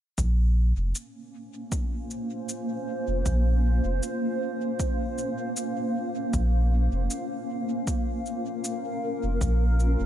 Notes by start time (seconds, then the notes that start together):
0.18 A#1 A#3, kick, cabasa
0.46 C#4
0.77 F1
0.95 cabasa
1.30 C5
1.40 F4
1.72 kick, cabasa
2.11 cabasa
2.26 F5
2.49 cabasa
3.08 F1
3.26 A#1, kick, cabasa
3.85 F1
4.03 cabasa
4.80 kick, cabasa
5.18 cabasa
5.57 cabasa
6.33 A#1, kick, cabasa
6.92 F1
7.10 cabasa
7.71 A#4
7.87 kick, cabasa
8.26 cabasa
8.64 cabasa
9.23 F1
9.41 A#1, kick, cabasa
9.80 cabasa
10.00 F1